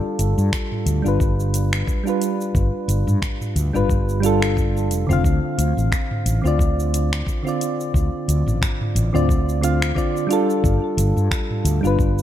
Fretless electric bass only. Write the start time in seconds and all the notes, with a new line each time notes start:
0.19 G1
0.38 G2
0.86 D2
1.05 G1
2.55 G1
2.88 G1
3.07 G2
3.56 D2
3.74 G1
4.91 F1
5.10 F1
5.25 D2
5.58 D2
5.77 A1
6.26 A1
6.44 D2
7.94 D2
8.28 D2
8.46 A1
8.95 A1
9.15 D2
10.64 G1
10.97 G1
11.16 G2
11.65 D2
11.84 G1